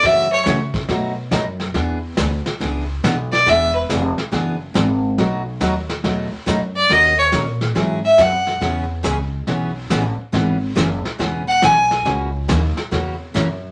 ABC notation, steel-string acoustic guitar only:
X:1
M:4/4
L:1/8
Q:"Swing" 1/4=140
K:C#m
V:1 name="Steel-string acoustic guitar"
[C,E,A,CF] z [C,E,A,CF] z [B,,F,A,DF] z [B,,F,A,DF] z | [E,B,=DG] z [E,B,DG] z [E,B,DG] z [E,B,DG] z | [E,B,=DG] z [E,B,DG] z [E,B,DG] z [E,B,DG] z | [B,,F,A,DF] z [B,,F,A,DF] z [B,,F,A,DF] z [B,,F,A,DF] z |
[D,^A,CF^A] z [D,A,CFA] z [E,F,^B,EG] z [E,F,B,EG] z | [C,E,B,CG] z [C,E,B,CG] z [C,E,B,CG] z [C,E,B,CG] z | [C,E,B,CG] z [C,E,B,CG] z [C,E,B,CG] z [C,E,B,CG] z | [C,E,^A,CF] z [C,E,A,CF] z [C,E,A,CF] z [C,E,A,CF] z |]